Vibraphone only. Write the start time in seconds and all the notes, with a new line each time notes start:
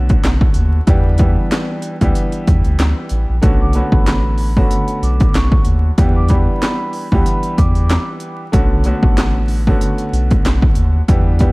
3.61 D6
3.75 B5
4.39 B5
5.03 D6
5.35 C#6
6.16 D6
6.30 B5
6.94 B5
7.58 D6